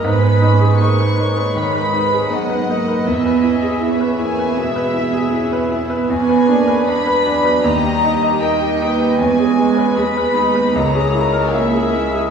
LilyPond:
<<
  \new Staff \with { instrumentName = "Violin section" } { \time 4/4 \key e \lydian \tempo 4 = 78 b''4 cis'''4 b''4 fis''4 | e''4. gis''8 e''4 r4 | gis''4 b''4 ais''4 g''4 | gis''4 b''4 ais''4 e''4 | }
  \new Staff \with { instrumentName = "Violin section" } { \time 4/4 \key e \lydian << { b'4 b'8 cis''4. dis''4~ | dis''4 e''2. | b'2 dis''4 dis''4 | b'8 b'4. ais'4 gis'4 | } \\ { gis'2 b'4 ais'4 | gis'4 gis'2. | gis'2 g'4 ais'8 b'8~ | b'4 b'4 cis''2 | } >> }
  \new Staff \with { instrumentName = "Grand piano" } { \time 4/4 \key e \lydian gis,16 b'16 dis'16 gis'16 dis'16 b'16 dis'16 b'16 dis16 b'16 dis'16 gis'16 dis'16 b'16 dis'16 b'16 | e,16 b'16 e'16 gis'16 e'16 b'16 e'16 b'16 b,16 b'16 e'16 gis'16 e'16 b'16 e'16 b'16 | e,16 b'16 d'16 b'16 d'16 b'16 d'16 b'16 dis,16 g'16 dis'16 dis''16 dis'16 g'16 dis'16 g'16 | e,16 gis'16 gis16 b'16 gis'16 b'16 gis'16 b'16 cis,16 gis'16 e'16 ais'16 e'16 gis'16 e'16 gis'16 | }
  \new Staff \with { instrumentName = "Viola section" } { \time 4/4 \key e \lydian << { dis'8 cis'8 dis'4 dis'8 dis'4. | e'4 cis'4 b8 e'4. | cis'4 b4 dis'8 g'8 dis'4 | cis'4 b8 dis'8 e'8 fis'8 e'4 | } \\ { b4 ais4 gis4 b8 ais8 | b8 cis'8 b8 ais8 gis4 cis'8 b8 | b8 ais8 gis8 fis8 g2 | gis2. ais8 gis8 | } >> }
  \new Staff \with { instrumentName = "Cello section" } { \clef bass \time 4/4 \key e \lydian gis,2. fis,4 | e,1 | e,2 dis,2 | e,4 dis,4 cis,2 | }
>>